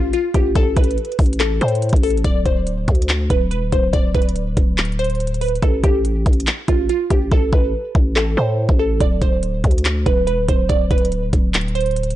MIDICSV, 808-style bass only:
0, 0, Header, 1, 2, 480
1, 0, Start_track
1, 0, Tempo, 422535
1, 630, Time_signature, 4, 2, 24, 8
1, 13809, End_track
2, 0, Start_track
2, 0, Title_t, "808-style bass"
2, 0, Program_c, 0, 38
2, 0, Note_on_c, 0, 33, 109
2, 141, Note_off_c, 0, 33, 0
2, 391, Note_on_c, 0, 33, 107
2, 621, Note_off_c, 0, 33, 0
2, 630, Note_on_c, 0, 33, 114
2, 860, Note_off_c, 0, 33, 0
2, 869, Note_on_c, 0, 33, 105
2, 1100, Note_off_c, 0, 33, 0
2, 1350, Note_on_c, 0, 33, 102
2, 1811, Note_off_c, 0, 33, 0
2, 1830, Note_on_c, 0, 45, 105
2, 2176, Note_off_c, 0, 45, 0
2, 2190, Note_on_c, 0, 33, 104
2, 2536, Note_off_c, 0, 33, 0
2, 2550, Note_on_c, 0, 26, 113
2, 2780, Note_off_c, 0, 26, 0
2, 2789, Note_on_c, 0, 26, 107
2, 3251, Note_off_c, 0, 26, 0
2, 3271, Note_on_c, 0, 38, 102
2, 3731, Note_off_c, 0, 38, 0
2, 3751, Note_on_c, 0, 26, 108
2, 3990, Note_on_c, 0, 28, 97
2, 4007, Note_off_c, 0, 26, 0
2, 4110, Note_on_c, 0, 26, 103
2, 4127, Note_off_c, 0, 28, 0
2, 4224, Note_off_c, 0, 26, 0
2, 4231, Note_on_c, 0, 26, 110
2, 4461, Note_off_c, 0, 26, 0
2, 4470, Note_on_c, 0, 26, 111
2, 4701, Note_off_c, 0, 26, 0
2, 4710, Note_on_c, 0, 26, 102
2, 5171, Note_off_c, 0, 26, 0
2, 5191, Note_on_c, 0, 26, 99
2, 6345, Note_off_c, 0, 26, 0
2, 6390, Note_on_c, 0, 33, 111
2, 6621, Note_off_c, 0, 33, 0
2, 6630, Note_on_c, 0, 33, 104
2, 7091, Note_off_c, 0, 33, 0
2, 7111, Note_on_c, 0, 33, 101
2, 7341, Note_off_c, 0, 33, 0
2, 7591, Note_on_c, 0, 33, 105
2, 7821, Note_off_c, 0, 33, 0
2, 8071, Note_on_c, 0, 33, 102
2, 8301, Note_off_c, 0, 33, 0
2, 8310, Note_on_c, 0, 33, 109
2, 8541, Note_off_c, 0, 33, 0
2, 8549, Note_on_c, 0, 33, 102
2, 8780, Note_off_c, 0, 33, 0
2, 9031, Note_on_c, 0, 33, 99
2, 9491, Note_off_c, 0, 33, 0
2, 9510, Note_on_c, 0, 45, 106
2, 9856, Note_off_c, 0, 45, 0
2, 9870, Note_on_c, 0, 33, 104
2, 10216, Note_off_c, 0, 33, 0
2, 10230, Note_on_c, 0, 26, 112
2, 10461, Note_off_c, 0, 26, 0
2, 10470, Note_on_c, 0, 26, 103
2, 10931, Note_off_c, 0, 26, 0
2, 10951, Note_on_c, 0, 38, 96
2, 11412, Note_off_c, 0, 38, 0
2, 11431, Note_on_c, 0, 26, 106
2, 11670, Note_on_c, 0, 28, 95
2, 11687, Note_off_c, 0, 26, 0
2, 11791, Note_on_c, 0, 26, 100
2, 11808, Note_off_c, 0, 28, 0
2, 11904, Note_off_c, 0, 26, 0
2, 11911, Note_on_c, 0, 26, 107
2, 12141, Note_off_c, 0, 26, 0
2, 12151, Note_on_c, 0, 26, 111
2, 12381, Note_off_c, 0, 26, 0
2, 12390, Note_on_c, 0, 26, 103
2, 12851, Note_off_c, 0, 26, 0
2, 12871, Note_on_c, 0, 26, 101
2, 13809, Note_off_c, 0, 26, 0
2, 13809, End_track
0, 0, End_of_file